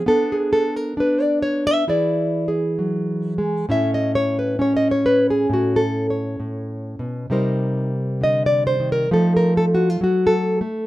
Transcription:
0.06 B3 D4 A4
0.32 G#4
0.53 A4
0.76 A#4
0.97 D4 B4
1.22 D5
1.42 C#5
1.67 E5
1.88 E3 E4 G#4 D5
2.48 G#4
2.78 F#3
3.38 G#3
3.69 A2 C#4 E4 E5
3.94 D#5
4.15 C#5
4.39 B4
4.59 C#4 C#5
4.77 D#5
4.91 C#5
5.06 B4
5.30 G#4
5.50 A2 F#4
5.76 A4
6.10 C#5
6.40 A2
6.99 B2
7.30 C3 G3 D#4 A#4 C5
8.21 D3 D#5
8.46 D5
8.67 C5
8.80 D#3
8.92 A#4
9.11 F3 A3 D#4 A4
9.37 A#4
9.57 A4
9.75 F#4
9.90 F4
10.01 F#3 F#4
10.27 A4
10.61 A3

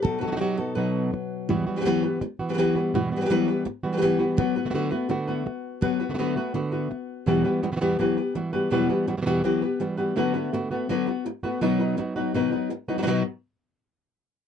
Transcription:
0.02 B2 F#3 D#4 A4, muted nylon-string guitar stroke
0.18 A4 B4
0.23 B3 D#4 F#4
0.27 F#3 B3 D#4 F#4
0.31 F#3 B3 D#4 F#4
0.36 F#3 B3 D#4 F#4 G4
0.41 B2 F#3 B3 D#4 F#4
0.57 B3 D#4 F#4 A4
0.75 B2 F#3 B3 D#4 F#4 B4
1.13 muted nylon-string guitar stroke
1.49 E2 B2 E3 G3 B3 F#4, muted nylon-string guitar stroke
1.67 E3 G3 B3 F#4
1.76 F#3 B3 G4 B4
1.81 F#3 B3 G4 B4
1.85 E3 F#3 B3 F#4 G4 B4
2.03 B3 G4 B4
2.21 muted nylon-string guitar stroke
2.39 E3 B3 F#4
2.49 F#3 B3 G4 B4
2.53 F#3 B3 G4 B4
2.58 E3 F#3 B3 G4 B4
2.75 E3 G3 B3 F#4 G4 B4
2.94 E2 B2 E3 G3 B3 F#4, muted nylon-string guitar stroke
3.12 E3 G3 B3 F#4
3.16 F#3 B3 G4 B4
3.21 F#3 B3 G4 B4
3.25 E3 F#3 B3 G4 B4
3.30 E3 F#3 G3 B3 F#4 G4 B4
3.48 B3 G4 B4
3.65 muted nylon-string guitar stroke
3.83 E3 G3 B3 F#4
3.92 F#3 B3 G4 B4
3.97 F#3 B3 G4 B4
4.02 E3 F#3 B3 G4 B4
4.19 E3 G3 B3 F#4 G4 B4
4.37 D3 F#3 B3 F#4 B4, muted nylon-string guitar stroke
4.56 B3 F#4 B4
4.65 D3 A3 B3 F#4
4.70 D3 F#3 A3 B3 F#4
4.74 D3 A3 B3 F#4 B4
4.91 A3 B3 F#4 B4
5.09 D3 A3 B3 F#4, muted nylon-string guitar stroke
5.28 B3 F#4 B4
5.46 muted nylon-string guitar stroke
5.81 D3 F#3 B3 F#4 B4, muted nylon-string guitar stroke
6.00 B3 F#4 B4
6.09 D3 A3 B3 F#4
6.14 D3 F#3 A3 B3 F#4
6.18 D3 A3 B3 F#4 B4
6.36 A3 B3 F#4 B4
6.54 D3 A3 B3 F#4, muted nylon-string guitar stroke
6.72 B3 F#4 B4
6.91 muted nylon-string guitar stroke
7.26 E2 B2 E3 F#3 G3 B3 F#4 G4 B4
7.44 E3 G3 B3 F#4 G4 B4
7.63 E3 G3 B3 F#4, muted nylon-string guitar stroke
7.72 B2 E3 G3 B3 F#4
7.76 B2 E3 G3 B3 F#4
7.81 E2 B2 E3 G3 B3 F#4 G4 B4
7.99 E3 F#3 B3 G4 B4, muted nylon-string guitar stroke
8.17 B3 G4 B4
8.35 E3 G3 B3 F#4, muted nylon-string guitar stroke
8.53 E3 G3 B3 F#4 G4 B4
8.70 E2 B2 E3 F#3 G3 B3 F#4 G4 B4
8.89 E3 G3 B3 F#4 G4 B4
9.07 E3 G3 B3 F#4, muted nylon-string guitar stroke
9.17 B2 E3 G3 B3 F#4
9.21 B2 E3 G3 B3 F#4
9.26 E2 B2 E3 G3 B3 F#4 G4 B4
9.44 E3 F#3 B3 G4 B4, muted nylon-string guitar stroke
9.62 B3 G4 B4
9.80 E3 G3 B3 F#4, muted nylon-string guitar stroke
9.97 E3 G3 B3 F#4 G4 B4
10.16 D3 F#3 A3 B3 F#4 B4
10.34 B3 F#4 B4
10.52 D3 A3 B3 F#4, muted nylon-string guitar stroke
10.71 A3 B3 F#4 B4
10.89 D3 F#3 B3 F#4 B4, muted nylon-string guitar stroke
11.07 B3 F#4 B4
11.26 muted nylon-string guitar stroke
11.43 A3 B3 F#4 B4
11.61 B2 D#3 F#3 B3 D#4 F#4 B4
11.80 F#3 B3 D#4 B4
11.97 F#3 B3 D#4 F#4, muted nylon-string guitar stroke
12.16 F#3 B3 D#4 F#4 B4
12.34 B2 D#3 F#3 B3 D#4 B4, muted nylon-string guitar stroke
12.52 F#3 B3 D#4 B4
12.70 muted nylon-string guitar stroke
12.88 F#3 B3 D#4 F#4 B4
12.98 D#3 F#3 B3 D#4 F#4 B4
13.02 D#3 F#3 B3 D#4 F#4 B4
13.07 B2 D#3 F#3 B3 D#4 F#4 B4

